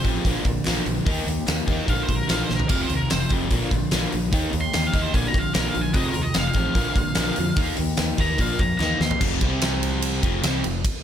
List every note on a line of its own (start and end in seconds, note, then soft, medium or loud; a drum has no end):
0.04 0.17 A1 medium
0.04 0.23 F2 medium
0.04 0.24 C3 medium
0.04 0.15 F3 medium
0.04 0.15 G#3 medium
0.04 0.15 C4 medium
0.04 0.13 F4 medium
0.04 kick medium
0.04 open hi-hat medium
0.14 0.25 F3 soft
0.14 0.26 G#3 medium
0.14 0.26 C4 medium
0.14 0.24 F4 medium
0.25 0.37 A#1 medium
0.25 0.35 A#2 medium
0.25 0.45 D3 medium
0.25 0.36 F3 medium
0.25 0.35 A#3 medium
0.25 0.35 D4 medium
0.25 0.33 F4 medium
0.25 kick medium
0.25 open hi-hat medium
0.34 0.45 A#3 medium
0.34 0.46 D4 medium
0.34 0.45 F4 medium
0.44 0.57 A#1 medium
0.44 0.63 A#2 medium
0.44 0.65 D3 medium
0.44 0.65 F3 medium
0.44 0.66 A#3 medium
0.44 0.65 D4 medium
0.44 0.66 F4 medium
0.44 kick medium
0.44 clap medium
0.44 open hi-hat soft
0.65 0.79 A#1 medium
0.65 0.76 A#2 medium
0.65 0.86 D3 medium
0.65 0.76 F3 medium
0.65 0.77 A#3 medium
0.65 0.76 D4 medium
0.65 0.75 F4 medium
0.65 snare loud
0.65 clap medium
0.65 open hi-hat medium
0.78 0.98 A#3 soft
0.78 0.97 D4 soft
0.86 0.98 A#1 medium
0.86 1.04 A#2 medium
0.86 1.06 D3 medium
0.86 1.04 F3 medium
0.86 open hi-hat medium
0.97 1.06 A#3 medium
0.97 1.08 D4 medium
0.97 1.07 F4 medium
1.06 1.19 D#2 medium
1.06 1.26 D#3 medium
1.06 1.27 A#3 medium
1.06 1.28 D#4 medium
1.06 1.28 G4 medium
1.06 kick loud
1.06 open hi-hat medium
1.26 1.39 D#2 medium
1.26 1.47 D#3 medium
1.26 1.48 A#3 medium
1.26 1.49 D#4 medium
1.26 open hi-hat soft
1.31 1.49 G4 medium
1.48 1.60 D#2 medium
1.48 1.68 D#3 medium
1.48 1.69 A#3 medium
1.48 1.69 D#4 medium
1.48 1.69 G4 loud
1.48 snare loud
1.48 clap medium
1.48 open hi-hat medium
1.67 1.80 D#2 medium
1.67 1.79 D#3 medium
1.67 1.79 A#3 medium
1.67 1.79 D#4 medium
1.67 kick medium
1.67 open hi-hat medium
1.72 1.77 G4 medium
1.79 1.89 D#4 soft
1.79 1.88 G4 medium
1.83 1.88 A#3 soft
1.88 2.01 A#1 medium
1.88 1.98 A#2 medium
1.88 2.09 D3 medium
1.88 1.99 F3 medium
1.88 1.99 A#3 medium
1.88 1.99 D4 medium
1.88 1.98 F4 medium
1.88 2.02 F5 medium
1.88 kick medium
1.88 open hi-hat medium
1.99 2.10 A#3 soft
1.99 2.09 F4 soft
2.03 2.15 C5 medium
2.07 2.22 A#1 medium
2.07 2.26 A#2 medium
2.07 2.29 F3 medium
2.07 2.30 A#3 medium
2.07 kick medium
2.07 open hi-hat medium
2.12 2.29 D3 medium
2.12 2.31 D4 medium
2.12 2.31 F4 medium
2.12 2.28 A#4 medium
2.29 2.42 A#1 medium
2.29 2.40 A#2 medium
2.29 2.49 D3 medium
2.29 2.40 F3 medium
2.29 2.40 A#3 medium
2.29 2.40 D4 medium
2.29 2.39 F4 medium
2.29 2.43 F5 medium
2.29 snare loud
2.29 clap medium
2.29 open hi-hat medium
2.40 2.61 A#3 soft
2.40 2.61 D4 soft
2.40 2.60 F4 soft
2.40 2.54 C5 medium
2.48 2.62 A#1 medium
2.48 2.67 A#2 medium
2.48 2.68 D3 medium
2.48 2.67 F3 medium
2.48 snare medium
2.55 2.69 A#4 medium
2.59 2.71 D4 soft
2.59 2.70 F4 medium
2.59 floor tom medium
2.64 2.88 C3 medium
2.64 2.72 A#3 soft
2.68 2.82 F1 medium
2.68 2.91 F2 medium
2.68 2.91 C3 medium
2.68 2.88 F3 medium
2.68 2.91 G#3 medium
2.68 2.82 F5 medium
2.68 kick loud
2.68 open hi-hat medium
2.68 crash medium
2.73 2.90 F3 medium
2.73 2.92 C4 medium
2.73 2.92 F4 medium
2.81 2.95 C5 medium
2.88 3.03 D#2 medium
2.88 3.08 F2 medium
2.88 3.08 C3 medium
2.88 3.11 F3 medium
2.88 3.12 G#3 medium
2.88 open hi-hat medium
2.93 3.10 F2 medium
2.93 3.10 C3 medium
2.93 3.12 C4 medium
2.93 3.12 F4 medium
2.93 3.10 A#4 medium
3.10 3.24 F1 medium
3.10 3.32 F2 medium
3.10 3.32 C3 medium
3.10 3.29 F3 medium
3.10 3.30 G#3 medium
3.10 3.32 F4 medium
3.10 3.30 C5 medium
3.10 snare loud
3.10 clap medium
3.10 open hi-hat medium
3.14 3.32 C4 medium
3.29 3.50 F1 medium
3.29 3.50 F2 loud
3.29 3.50 C3 medium
3.29 3.41 F3 medium
3.29 3.41 G#3 medium
3.29 3.40 C4 medium
3.29 kick medium
3.29 open hi-hat medium
3.34 3.40 F4 medium
3.41 3.51 F3 soft
3.41 3.52 G#3 medium
3.41 3.51 C4 medium
3.41 3.51 F4 medium
3.50 3.63 A#1 medium
3.50 3.62 A#2 medium
3.50 3.71 D3 medium
3.50 3.62 F3 medium
3.50 3.62 A#3 medium
3.50 3.63 D4 medium
3.50 3.61 F4 medium
3.50 kick medium
3.50 open hi-hat medium
3.62 3.73 A#3 soft
3.62 3.73 D4 medium
3.62 3.72 F4 medium
3.71 3.84 A#1 medium
3.71 3.90 A#2 medium
3.71 3.90 D3 medium
3.71 3.92 F3 medium
3.71 3.93 A#3 medium
3.71 3.93 D4 medium
3.71 kick medium
3.71 clap medium
3.71 open hi-hat medium
3.76 3.94 F4 medium
3.91 4.05 A#1 medium
3.91 4.03 A#2 medium
3.91 4.11 D3 medium
3.91 4.03 F3 medium
3.91 4.03 A#3 medium
3.91 4.03 D4 medium
3.91 snare loud
3.91 clap medium
3.91 open hi-hat medium
3.96 4.02 F4 medium
4.04 4.25 A#3 soft
4.04 4.24 D4 medium
4.04 4.22 F4 medium
4.12 4.33 A#1 medium
4.12 4.31 A#2 medium
4.12 4.31 D3 medium
4.12 4.32 F3 medium
4.12 open hi-hat medium
4.23 4.31 A#3 medium
4.23 4.32 D4 medium
4.23 4.32 F4 medium
4.31 4.45 D#2 medium
4.31 4.51 D#3 medium
4.31 4.52 A#3 medium
4.31 4.53 D#4 loud
4.31 4.53 G4 loud
4.31 kick loud
4.31 open hi-hat medium
4.52 4.66 D#2 medium
4.52 4.72 D#3 medium
4.52 4.73 A#3 medium
4.52 4.74 D#4 medium
4.52 4.74 G4 medium
4.52 open hi-hat medium
4.61 4.87 C6 loud
4.73 4.86 D#2 medium
4.73 4.92 D#3 medium
4.73 4.93 A#3 medium
4.73 4.94 D#4 medium
4.73 4.95 G4 medium
4.73 snare loud
4.73 clap medium
4.73 open hi-hat medium
4.87 5.00 F5 medium
4.93 5.07 D#2 medium
4.93 5.04 D#3 medium
4.93 5.04 A#3 medium
4.93 5.04 D#4 medium
4.93 5.02 G4 medium
4.93 kick medium
4.93 open hi-hat medium
5.02 5.15 D#4 medium
5.02 5.14 G4 medium
5.02 5.14 C5 medium
5.07 5.15 A#3 soft
5.14 5.26 A#1 medium
5.14 5.24 A#2 medium
5.14 5.34 D3 loud
5.14 5.25 F3 medium
5.14 5.25 A#3 medium
5.14 5.26 D4 medium
5.14 5.23 F4 medium
5.14 5.27 G#5 medium
5.14 kick medium
5.14 open hi-hat medium
5.24 5.35 D4 medium
5.24 5.35 F4 soft
5.24 5.41 A#5 medium
5.28 5.34 A#3 soft
5.34 5.46 A#1 medium
5.34 5.53 A#2 medium
5.34 5.53 D3 medium
5.34 5.54 F3 medium
5.34 5.54 A#3 medium
5.34 5.55 D4 medium
5.34 5.55 F4 medium
5.34 kick medium
5.34 clap medium
5.34 open hi-hat medium
5.39 5.53 F5 loud
5.54 5.68 A#1 medium
5.54 5.65 A#2 medium
5.54 5.74 D3 medium
5.54 5.65 F3 medium
5.54 5.65 A#3 medium
5.54 5.63 D4 medium
5.54 5.62 F4 medium
5.54 5.67 A#4 medium
5.54 snare loud
5.54 clap medium
5.54 open hi-hat medium
5.63 5.86 A#3 soft
5.63 5.84 D4 soft
5.63 5.83 F4 medium
5.68 5.82 F5 medium
5.74 5.95 A#1 medium
5.74 5.93 A#2 medium
5.74 5.94 D3 medium
5.74 5.93 F3 medium
5.74 open hi-hat medium
5.81 5.93 F4 medium
5.81 5.95 G#5 medium
5.85 5.93 A#3 soft
5.85 5.94 D4 soft
5.92 6.08 F1 loud
5.92 6.14 F2 medium
5.92 6.15 C3 medium
5.92 6.12 F3 medium
5.92 6.13 G#3 medium
5.92 6.15 C4 medium
5.92 6.16 F4 medium
5.92 6.08 D#5 medium
5.92 kick loud
5.92 open hi-hat medium
6.08 6.22 A#4 medium
6.13 6.28 D#2 medium
6.13 6.33 F2 medium
6.13 6.33 C3 medium
6.13 6.33 F3 medium
6.13 6.33 G#3 medium
6.13 6.33 C4 medium
6.13 open hi-hat medium
6.17 6.34 F4 medium
6.22 6.37 D#5 medium
6.33 6.48 F1 medium
6.33 6.55 F2 medium
6.33 6.56 C3 medium
6.33 6.52 F3 medium
6.33 6.54 G#3 medium
6.33 6.54 C4 medium
6.33 6.56 F4 medium
6.33 6.47 F5 medium
6.33 snare loud
6.33 clap medium
6.33 open hi-hat medium
6.48 7.67 F5 medium
6.53 6.68 A1 medium
6.53 6.75 F2 medium
6.53 6.75 C3 loud
6.53 6.65 F3 medium
6.53 6.64 G#3 medium
6.53 6.63 C4 medium
6.53 6.62 F4 medium
6.53 kick medium
6.53 open hi-hat medium
6.63 6.73 F3 soft
6.63 6.74 G#3 soft
6.63 6.75 C4 medium
6.63 6.74 F4 medium
6.74 6.88 A#1 medium
6.74 6.86 A#2 medium
6.74 6.96 D3 medium
6.74 6.86 F3 medium
6.74 6.86 A#3 medium
6.74 6.86 D4 medium
6.74 6.84 F4 medium
6.74 kick medium
6.74 open hi-hat medium
6.85 6.94 D4 medium
6.85 6.96 F4 medium
6.89 6.94 A#3 soft
6.94 7.08 A#1 medium
6.94 7.15 A#2 medium
6.94 7.15 D3 medium
6.94 7.15 F3 medium
6.94 7.15 A#3 medium
6.94 7.15 D4 medium
6.94 7.16 F4 medium
6.94 kick medium
6.94 clap medium
6.94 open hi-hat medium
7.15 7.30 A#1 medium
7.15 7.27 A#2 medium
7.15 7.36 D3 medium
7.15 7.27 F3 medium
7.15 7.27 A#3 medium
7.15 7.26 D4 medium
7.15 7.24 F4 medium
7.15 snare loud
7.15 clap medium
7.15 open hi-hat medium
7.25 7.48 A#3 soft
7.25 7.47 D4 soft
7.25 7.45 F4 medium
7.36 7.51 F2 medium
7.36 7.56 A#2 medium
7.36 7.56 D3 medium
7.36 7.57 F3 medium
7.36 open hi-hat medium
7.46 7.54 A#3 soft
7.46 7.56 D4 medium
7.46 7.57 F4 medium
7.55 7.70 D#2 medium
7.55 7.76 D#3 medium
7.55 7.77 A#3 medium
7.55 7.78 D#4 medium
7.55 7.78 G4 medium
7.55 kick loud
7.55 open hi-hat medium
7.77 7.91 D#2 medium
7.77 7.95 D#3 medium
7.77 7.96 A#3 medium
7.77 7.97 D#4 medium
7.77 7.98 G4 medium
7.77 open hi-hat medium
7.96 8.11 D#2 medium
7.96 8.17 D#3 medium
7.96 8.17 A#3 medium
7.96 8.19 D#4 loud
7.96 8.19 G4 medium
7.96 snare loud
7.96 clap loud
7.96 open hi-hat medium
8.18 8.39 D#2 medium
8.18 8.29 D#3 medium
8.18 8.29 A#3 medium
8.18 8.39 D#4 loud
8.18 8.27 G4 medium
8.18 8.40 A#5 loud
8.18 kick medium
8.18 open hi-hat medium
8.28 8.39 A#3 soft
8.28 8.40 D#4 soft
8.28 8.39 G4 medium
8.38 8.52 A#1 medium
8.38 8.50 A#2 medium
8.38 8.51 F3 medium
8.38 8.51 A#3 medium
8.38 8.49 D4 medium
8.38 8.49 F4 medium
8.38 8.60 F5 medium
8.38 kick medium
8.38 open hi-hat medium
8.50 8.60 A#3 soft
8.50 8.60 D4 soft
8.50 8.60 F4 medium
8.59 8.72 F2 medium
8.59 8.79 A#2 medium
8.59 8.80 F3 medium
8.59 8.80 A#3 medium
8.59 8.81 D4 medium
8.59 8.82 F4 medium
8.59 8.77 A#5 medium
8.59 kick medium
8.59 clap medium
8.59 open hi-hat soft
8.78 8.93 D#2 medium
8.78 8.91 D#3 medium
8.78 8.91 A#3 medium
8.78 8.91 D#4 medium
8.78 8.99 A#5 loud
8.78 snare medium
8.78 clap medium
8.82 8.89 G4 medium
8.90 9.13 A#3 soft
8.90 9.11 D#4 soft
8.90 9.09 G4 medium
9.00 9.13 D#2 medium
9.00 9.19 D#3 medium
9.00 9.20 A#3 medium
9.00 9.21 C6 medium
9.00 snare medium
9.11 9.23 A#3 soft
9.11 9.22 D#4 medium
9.11 9.21 G4 medium
9.11 floor tom medium
9.21 9.40 F1 medium
9.21 9.41 F2 medium
9.21 9.41 C3 loud
9.21 9.42 F3 loud
9.21 kick loud
9.21 crash loud
9.41 10.19 C2 medium
9.41 10.21 C3 medium
9.41 10.22 G3 loud
9.41 10.23 C4 medium
9.41 kick loud
9.41 ride medium
9.62 snare loud
9.62 clap medium
9.62 ride loud
9.83 ride medium
10.02 ride medium
10.22 10.42 F1 medium
10.22 10.42 F2 medium
10.22 10.41 C3 medium
10.22 10.42 F3 loud
10.22 kick loud
10.22 ride medium
10.42 10.62 C2 loud
10.42 10.62 C3 medium
10.42 10.63 G3 medium
10.42 10.63 C4 medium
10.42 snare loud
10.42 clap medium
10.42 ride medium
10.64 10.83 F1 medium
10.64 10.80 F2 medium
10.64 10.80 C3 medium
10.64 ride medium
10.85 kick loud
10.85 ride medium